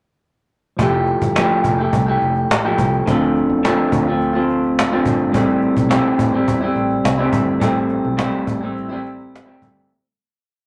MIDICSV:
0, 0, Header, 1, 5, 480
1, 0, Start_track
1, 0, Key_signature, 0, "minor"
1, 0, Tempo, 570342
1, 666, Time_signature, 4, 2, 24, 8
1, 8977, End_track
2, 0, Start_track
2, 0, Title_t, "Clean electric guitar"
2, 0, Program_c, 0, 27
2, 663, Note_on_c, 0, 53, 57
2, 673, Note_on_c, 0, 57, 51
2, 682, Note_on_c, 0, 64, 61
2, 690, Note_on_c, 0, 67, 62
2, 1137, Note_off_c, 0, 53, 0
2, 1141, Note_on_c, 0, 53, 80
2, 1144, Note_off_c, 0, 57, 0
2, 1146, Note_off_c, 0, 64, 0
2, 1147, Note_on_c, 0, 57, 72
2, 1149, Note_off_c, 0, 67, 0
2, 1156, Note_on_c, 0, 64, 85
2, 1159, Note_on_c, 0, 67, 82
2, 1489, Note_off_c, 0, 67, 0
2, 1499, Note_on_c, 0, 67, 52
2, 1502, Note_off_c, 0, 53, 0
2, 1505, Note_off_c, 0, 57, 0
2, 1510, Note_off_c, 0, 64, 0
2, 1518, Note_on_c, 0, 64, 45
2, 1524, Note_on_c, 0, 57, 47
2, 1727, Note_off_c, 0, 67, 0
2, 1737, Note_on_c, 0, 67, 52
2, 1743, Note_off_c, 0, 64, 0
2, 1753, Note_on_c, 0, 64, 52
2, 1754, Note_off_c, 0, 57, 0
2, 1764, Note_on_c, 0, 57, 44
2, 2216, Note_off_c, 0, 67, 0
2, 2217, Note_off_c, 0, 64, 0
2, 2226, Note_on_c, 0, 67, 69
2, 2227, Note_on_c, 0, 64, 60
2, 2233, Note_off_c, 0, 57, 0
2, 2236, Note_on_c, 0, 57, 63
2, 2242, Note_on_c, 0, 53, 58
2, 2572, Note_off_c, 0, 53, 0
2, 2575, Note_on_c, 0, 50, 52
2, 2581, Note_off_c, 0, 57, 0
2, 2584, Note_off_c, 0, 64, 0
2, 2584, Note_off_c, 0, 67, 0
2, 2591, Note_on_c, 0, 57, 60
2, 2596, Note_on_c, 0, 60, 57
2, 2609, Note_on_c, 0, 65, 67
2, 3046, Note_off_c, 0, 50, 0
2, 3056, Note_on_c, 0, 50, 80
2, 3066, Note_off_c, 0, 57, 0
2, 3068, Note_off_c, 0, 65, 0
2, 3070, Note_on_c, 0, 57, 72
2, 3076, Note_off_c, 0, 60, 0
2, 3079, Note_on_c, 0, 60, 85
2, 3079, Note_on_c, 0, 65, 87
2, 3409, Note_off_c, 0, 65, 0
2, 3418, Note_off_c, 0, 50, 0
2, 3419, Note_on_c, 0, 65, 51
2, 3425, Note_off_c, 0, 57, 0
2, 3426, Note_off_c, 0, 60, 0
2, 3437, Note_on_c, 0, 60, 48
2, 3451, Note_on_c, 0, 57, 44
2, 3636, Note_off_c, 0, 65, 0
2, 3646, Note_on_c, 0, 65, 53
2, 3652, Note_off_c, 0, 60, 0
2, 3662, Note_on_c, 0, 60, 50
2, 3663, Note_off_c, 0, 57, 0
2, 3673, Note_on_c, 0, 57, 50
2, 4127, Note_off_c, 0, 65, 0
2, 4137, Note_on_c, 0, 65, 70
2, 4139, Note_off_c, 0, 60, 0
2, 4142, Note_on_c, 0, 60, 66
2, 4146, Note_off_c, 0, 57, 0
2, 4149, Note_on_c, 0, 57, 63
2, 4150, Note_on_c, 0, 50, 56
2, 4477, Note_on_c, 0, 45, 58
2, 4485, Note_off_c, 0, 57, 0
2, 4488, Note_on_c, 0, 55, 57
2, 4489, Note_off_c, 0, 60, 0
2, 4498, Note_off_c, 0, 65, 0
2, 4499, Note_on_c, 0, 60, 60
2, 4505, Note_off_c, 0, 50, 0
2, 4505, Note_on_c, 0, 64, 68
2, 4953, Note_off_c, 0, 45, 0
2, 4957, Note_off_c, 0, 55, 0
2, 4957, Note_on_c, 0, 45, 76
2, 4961, Note_on_c, 0, 55, 83
2, 4964, Note_off_c, 0, 60, 0
2, 4968, Note_on_c, 0, 60, 93
2, 4976, Note_off_c, 0, 64, 0
2, 4979, Note_on_c, 0, 64, 87
2, 5310, Note_off_c, 0, 64, 0
2, 5320, Note_on_c, 0, 64, 48
2, 5324, Note_off_c, 0, 60, 0
2, 5328, Note_off_c, 0, 45, 0
2, 5330, Note_off_c, 0, 55, 0
2, 5334, Note_on_c, 0, 60, 49
2, 5349, Note_on_c, 0, 55, 44
2, 5550, Note_off_c, 0, 64, 0
2, 5560, Note_on_c, 0, 64, 52
2, 5566, Note_off_c, 0, 60, 0
2, 5576, Note_on_c, 0, 60, 45
2, 5578, Note_off_c, 0, 55, 0
2, 5588, Note_on_c, 0, 55, 45
2, 6038, Note_off_c, 0, 64, 0
2, 6042, Note_on_c, 0, 64, 68
2, 6046, Note_off_c, 0, 60, 0
2, 6050, Note_on_c, 0, 60, 59
2, 6052, Note_off_c, 0, 55, 0
2, 6055, Note_on_c, 0, 55, 56
2, 6065, Note_on_c, 0, 45, 57
2, 6387, Note_off_c, 0, 45, 0
2, 6394, Note_off_c, 0, 55, 0
2, 6397, Note_on_c, 0, 45, 51
2, 6400, Note_off_c, 0, 60, 0
2, 6405, Note_on_c, 0, 55, 63
2, 6410, Note_off_c, 0, 64, 0
2, 6411, Note_on_c, 0, 60, 59
2, 6422, Note_on_c, 0, 64, 65
2, 6874, Note_off_c, 0, 45, 0
2, 6877, Note_on_c, 0, 45, 75
2, 6878, Note_off_c, 0, 55, 0
2, 6882, Note_on_c, 0, 55, 80
2, 6889, Note_off_c, 0, 60, 0
2, 6893, Note_on_c, 0, 60, 79
2, 6895, Note_off_c, 0, 64, 0
2, 6899, Note_on_c, 0, 64, 79
2, 7235, Note_off_c, 0, 64, 0
2, 7245, Note_on_c, 0, 64, 52
2, 7248, Note_off_c, 0, 45, 0
2, 7251, Note_off_c, 0, 55, 0
2, 7253, Note_off_c, 0, 60, 0
2, 7263, Note_on_c, 0, 60, 48
2, 7272, Note_on_c, 0, 55, 44
2, 7472, Note_off_c, 0, 64, 0
2, 7482, Note_on_c, 0, 64, 56
2, 7490, Note_off_c, 0, 60, 0
2, 7500, Note_off_c, 0, 55, 0
2, 7500, Note_on_c, 0, 60, 55
2, 7510, Note_on_c, 0, 55, 49
2, 7955, Note_off_c, 0, 64, 0
2, 7959, Note_on_c, 0, 64, 59
2, 7963, Note_off_c, 0, 60, 0
2, 7966, Note_on_c, 0, 60, 62
2, 7973, Note_off_c, 0, 55, 0
2, 7976, Note_on_c, 0, 55, 60
2, 7978, Note_on_c, 0, 45, 50
2, 8330, Note_off_c, 0, 64, 0
2, 8334, Note_off_c, 0, 60, 0
2, 8339, Note_off_c, 0, 55, 0
2, 8340, Note_off_c, 0, 45, 0
2, 8977, End_track
3, 0, Start_track
3, 0, Title_t, "Tine electric piano"
3, 0, Program_c, 1, 4
3, 645, Note_on_c, 1, 53, 67
3, 659, Note_on_c, 1, 57, 58
3, 673, Note_on_c, 1, 64, 57
3, 688, Note_on_c, 1, 67, 70
3, 811, Control_c, 1, 64, 127
3, 2539, Note_off_c, 1, 53, 0
3, 2546, Note_off_c, 1, 57, 0
3, 2553, Note_off_c, 1, 64, 0
3, 2558, Note_on_c, 1, 53, 69
3, 2560, Note_off_c, 1, 67, 0
3, 2572, Note_on_c, 1, 60, 58
3, 2586, Note_on_c, 1, 62, 59
3, 2592, Control_c, 1, 64, 0
3, 2599, Note_on_c, 1, 69, 71
3, 2724, Control_c, 1, 64, 127
3, 4454, Note_off_c, 1, 53, 0
3, 4460, Note_off_c, 1, 60, 0
3, 4467, Note_off_c, 1, 62, 0
3, 4474, Note_off_c, 1, 69, 0
3, 4474, Note_on_c, 1, 55, 67
3, 4486, Note_on_c, 1, 59, 52
3, 4503, Note_on_c, 1, 64, 57
3, 4509, Control_c, 1, 64, 0
3, 4515, Note_on_c, 1, 69, 70
3, 4546, Note_on_c, 1, 60, 60
3, 4548, Note_off_c, 1, 59, 0
3, 4655, Control_c, 1, 64, 127
3, 6372, Note_off_c, 1, 55, 0
3, 6387, Note_off_c, 1, 64, 0
3, 6392, Note_off_c, 1, 69, 0
3, 6397, Note_on_c, 1, 55, 69
3, 6399, Note_off_c, 1, 60, 0
3, 6409, Note_on_c, 1, 60, 64
3, 6419, Note_on_c, 1, 64, 61
3, 6435, Note_on_c, 1, 69, 74
3, 8056, Note_off_c, 1, 55, 0
3, 8062, Note_off_c, 1, 60, 0
3, 8067, Note_off_c, 1, 64, 0
3, 8075, Note_off_c, 1, 69, 0
3, 8091, Note_on_c, 1, 55, 49
3, 8097, Note_on_c, 1, 60, 49
3, 8103, Note_on_c, 1, 64, 50
3, 8113, Note_on_c, 1, 69, 58
3, 8336, Note_off_c, 1, 55, 0
3, 8339, Note_off_c, 1, 60, 0
3, 8342, Note_off_c, 1, 64, 0
3, 8347, Note_off_c, 1, 69, 0
3, 8354, Control_c, 1, 64, 0
3, 8977, End_track
4, 0, Start_track
4, 0, Title_t, "Fingered electric bass"
4, 0, Program_c, 2, 33
4, 662, Note_on_c, 2, 29, 88
4, 951, Note_off_c, 2, 29, 0
4, 1022, Note_on_c, 2, 31, 75
4, 1215, Note_off_c, 2, 31, 0
4, 1380, Note_on_c, 2, 29, 81
4, 1573, Note_off_c, 2, 29, 0
4, 1623, Note_on_c, 2, 36, 88
4, 1815, Note_off_c, 2, 36, 0
4, 1866, Note_on_c, 2, 29, 82
4, 2057, Note_off_c, 2, 29, 0
4, 2105, Note_on_c, 2, 33, 77
4, 2296, Note_off_c, 2, 33, 0
4, 2341, Note_on_c, 2, 36, 82
4, 2533, Note_off_c, 2, 36, 0
4, 2585, Note_on_c, 2, 38, 95
4, 2872, Note_off_c, 2, 38, 0
4, 2941, Note_on_c, 2, 40, 79
4, 3133, Note_off_c, 2, 40, 0
4, 3300, Note_on_c, 2, 38, 81
4, 4225, Note_off_c, 2, 38, 0
4, 4254, Note_on_c, 2, 31, 71
4, 4494, Note_off_c, 2, 31, 0
4, 4494, Note_on_c, 2, 33, 92
4, 4784, Note_off_c, 2, 33, 0
4, 4853, Note_on_c, 2, 35, 90
4, 5047, Note_off_c, 2, 35, 0
4, 5208, Note_on_c, 2, 33, 81
4, 5404, Note_off_c, 2, 33, 0
4, 5453, Note_on_c, 2, 40, 84
4, 5647, Note_off_c, 2, 40, 0
4, 5685, Note_on_c, 2, 33, 81
4, 5882, Note_off_c, 2, 33, 0
4, 5926, Note_on_c, 2, 36, 81
4, 6123, Note_off_c, 2, 36, 0
4, 6164, Note_on_c, 2, 31, 80
4, 6362, Note_off_c, 2, 31, 0
4, 6410, Note_on_c, 2, 33, 91
4, 6702, Note_off_c, 2, 33, 0
4, 6772, Note_on_c, 2, 35, 83
4, 6967, Note_off_c, 2, 35, 0
4, 7131, Note_on_c, 2, 33, 84
4, 8062, Note_off_c, 2, 33, 0
4, 8094, Note_on_c, 2, 31, 89
4, 8289, Note_off_c, 2, 31, 0
4, 8977, End_track
5, 0, Start_track
5, 0, Title_t, "Cajon"
5, 663, Note_on_c, 9, 36, 91
5, 747, Note_off_c, 9, 36, 0
5, 793, Note_on_c, 9, 38, 30
5, 877, Note_off_c, 9, 38, 0
5, 895, Note_on_c, 9, 38, 33
5, 979, Note_off_c, 9, 38, 0
5, 1023, Note_on_c, 9, 36, 73
5, 1107, Note_off_c, 9, 36, 0
5, 1145, Note_on_c, 9, 38, 99
5, 1229, Note_off_c, 9, 38, 0
5, 1381, Note_on_c, 9, 36, 74
5, 1465, Note_off_c, 9, 36, 0
5, 1623, Note_on_c, 9, 36, 84
5, 1707, Note_off_c, 9, 36, 0
5, 1862, Note_on_c, 9, 38, 37
5, 1946, Note_off_c, 9, 38, 0
5, 1979, Note_on_c, 9, 38, 28
5, 2064, Note_off_c, 9, 38, 0
5, 2113, Note_on_c, 9, 38, 105
5, 2198, Note_off_c, 9, 38, 0
5, 2343, Note_on_c, 9, 36, 80
5, 2427, Note_off_c, 9, 36, 0
5, 2467, Note_on_c, 9, 38, 23
5, 2552, Note_off_c, 9, 38, 0
5, 2587, Note_on_c, 9, 36, 82
5, 2671, Note_off_c, 9, 36, 0
5, 2723, Note_on_c, 9, 38, 33
5, 2807, Note_off_c, 9, 38, 0
5, 2825, Note_on_c, 9, 38, 33
5, 2909, Note_off_c, 9, 38, 0
5, 3070, Note_on_c, 9, 38, 97
5, 3154, Note_off_c, 9, 38, 0
5, 3301, Note_on_c, 9, 36, 80
5, 3385, Note_off_c, 9, 36, 0
5, 3544, Note_on_c, 9, 38, 35
5, 3628, Note_off_c, 9, 38, 0
5, 3783, Note_on_c, 9, 38, 40
5, 3867, Note_off_c, 9, 38, 0
5, 3896, Note_on_c, 9, 38, 28
5, 3981, Note_off_c, 9, 38, 0
5, 4030, Note_on_c, 9, 38, 98
5, 4114, Note_off_c, 9, 38, 0
5, 4254, Note_on_c, 9, 36, 78
5, 4338, Note_off_c, 9, 36, 0
5, 4372, Note_on_c, 9, 38, 25
5, 4456, Note_off_c, 9, 38, 0
5, 4495, Note_on_c, 9, 36, 96
5, 4580, Note_off_c, 9, 36, 0
5, 4627, Note_on_c, 9, 38, 30
5, 4711, Note_off_c, 9, 38, 0
5, 4728, Note_on_c, 9, 38, 36
5, 4812, Note_off_c, 9, 38, 0
5, 4852, Note_on_c, 9, 36, 69
5, 4937, Note_off_c, 9, 36, 0
5, 4972, Note_on_c, 9, 38, 98
5, 5056, Note_off_c, 9, 38, 0
5, 5210, Note_on_c, 9, 36, 82
5, 5294, Note_off_c, 9, 36, 0
5, 5452, Note_on_c, 9, 36, 81
5, 5536, Note_off_c, 9, 36, 0
5, 5688, Note_on_c, 9, 38, 40
5, 5772, Note_off_c, 9, 38, 0
5, 5807, Note_on_c, 9, 38, 27
5, 5891, Note_off_c, 9, 38, 0
5, 5935, Note_on_c, 9, 38, 95
5, 6019, Note_off_c, 9, 38, 0
5, 6166, Note_on_c, 9, 36, 77
5, 6250, Note_off_c, 9, 36, 0
5, 6281, Note_on_c, 9, 38, 24
5, 6365, Note_off_c, 9, 38, 0
5, 6408, Note_on_c, 9, 36, 92
5, 6492, Note_off_c, 9, 36, 0
5, 6539, Note_on_c, 9, 38, 32
5, 6623, Note_off_c, 9, 38, 0
5, 6640, Note_on_c, 9, 38, 35
5, 6724, Note_off_c, 9, 38, 0
5, 6889, Note_on_c, 9, 38, 103
5, 6974, Note_off_c, 9, 38, 0
5, 7131, Note_on_c, 9, 36, 78
5, 7215, Note_off_c, 9, 36, 0
5, 7380, Note_on_c, 9, 38, 38
5, 7464, Note_off_c, 9, 38, 0
5, 7618, Note_on_c, 9, 38, 38
5, 7703, Note_off_c, 9, 38, 0
5, 7743, Note_on_c, 9, 38, 27
5, 7827, Note_off_c, 9, 38, 0
5, 7874, Note_on_c, 9, 38, 93
5, 7958, Note_off_c, 9, 38, 0
5, 8096, Note_on_c, 9, 36, 80
5, 8180, Note_off_c, 9, 36, 0
5, 8224, Note_on_c, 9, 38, 26
5, 8308, Note_off_c, 9, 38, 0
5, 8977, End_track
0, 0, End_of_file